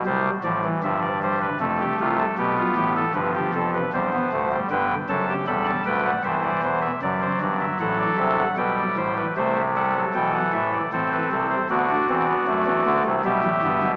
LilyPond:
<<
  \new Staff \with { instrumentName = "Pipe organ" } { \time 3/4 \key c \major \tempo 4 = 77 << { r2. | r2. | g''8 a''8 b''16 a''16 g''16 fis''16 e''16 d''16 c''16 e''16 | d''16 c''16 d''16 e''16 fis''16 d''16 e''16 fis''16 g''4 |
e''8 fis''8 g''16 fis''16 e''16 d''16 c''16 b'16 a'16 c''16 | d''2 e''4 | } \\ { c''8 d''8 e''16 d''16 c''16 b'16 a'16 g'16 f'16 a'16 | g'16 f'16 g'16 a'16 b'16 g'16 a'16 b'16 c''4 | b'8 a'16 g'16 a'8 b'8 c''4 | r4 a'4 b'16 d''16 c''16 b'16 |
c''8 a'4. a'4 | fis'2 g'4 | } >> }
  \new Staff \with { instrumentName = "Pipe organ" } { \clef bass \time 3/4 \key c \major << { g8 f16 e16 f8 g8 a4 | b4 f4 g16 b16 a16 g16 | d8 fis8 g4 e4 | fis2 g4 |
a8 g16 fis16 e4 c'4 | b16 d'16 c'16 b16 a4 g8 b8 | } \\ { <c, c>8 <a,, a,>8 <g,, g,>4 <f,, f,>8 <c, c>8 | <b,, b,>8 <a,, a,>8 <g,, g,>8 <f,, f,>8 <e,, e,>8 <d,, d,>8 | <g,, g,>8 <fis,, fis,>8 <e,, e,>8 <d,, d,>8 <c,, c,>8 <e,, e,>8 | <fis,, fis,>8 <g,, g,>8 <a,, a,>8 <c, c>8 <b,, b,>8 <a,, a,>8 |
<c, c>4 <b,, b,>8 <a,, a,>8 <a,, a,>8 <c, c>8 | <d, d>8 <e, e>8 <fis, fis>16 <e, e>16 <d, d>16 <c, c>16 <b,, b,>16 <a,, a,>16 <g,, g,>16 <b,, b,>16 | } >> }
>>